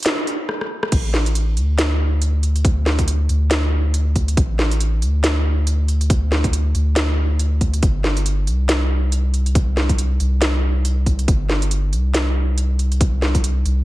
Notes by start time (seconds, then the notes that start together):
0.03 snare, closed hi-hat
0.06 closed hi-hat
0.27 closed hi-hat
0.49 cross-stick
0.61 cross-stick
0.83 cross-stick
0.92 A1, kick, closed hi-hat, crash
1.14 snare
1.26 closed hi-hat
1.35 closed hi-hat
1.57 D2, closed hi-hat
1.79 snare, closed hi-hat
2.22 closed hi-hat
2.43 closed hi-hat
2.56 closed hi-hat
2.65 kick, closed hi-hat
2.86 snare
2.99 kick, closed hi-hat
3.08 closed hi-hat
3.29 D2, closed hi-hat
3.51 snare, closed hi-hat
3.94 closed hi-hat
4.16 kick, closed hi-hat
4.28 closed hi-hat
4.37 A1, kick, closed hi-hat
4.59 snare
4.71 closed hi-hat
4.80 closed hi-hat
5.02 D2, closed hi-hat
5.24 snare, closed hi-hat
5.67 closed hi-hat
5.88 closed hi-hat
6.01 closed hi-hat
6.10 kick, closed hi-hat
6.32 snare
6.44 kick, closed hi-hat
6.53 closed hi-hat
6.75 D2, closed hi-hat
6.96 snare, closed hi-hat
7.39 closed hi-hat
7.61 kick, closed hi-hat
7.74 closed hi-hat
7.83 G1, kick, closed hi-hat
8.04 snare
8.17 closed hi-hat
8.26 closed hi-hat
8.47 C2, closed hi-hat
8.69 snare, closed hi-hat
9.12 closed hi-hat
9.34 closed hi-hat
9.46 closed hi-hat
9.55 kick, closed hi-hat
9.77 snare
9.89 kick, closed hi-hat
9.98 closed hi-hat
10.20 C2, closed hi-hat
10.42 snare, closed hi-hat
10.85 closed hi-hat
11.06 kick, closed hi-hat
11.19 closed hi-hat
11.28 G1, kick, closed hi-hat
11.49 snare
11.62 closed hi-hat
11.71 closed hi-hat
11.93 C2, closed hi-hat
12.14 snare, closed hi-hat
12.58 closed hi-hat
12.79 closed hi-hat
12.92 closed hi-hat
13.01 kick, closed hi-hat
13.22 snare
13.35 kick, closed hi-hat
13.44 closed hi-hat
13.65 C2, closed hi-hat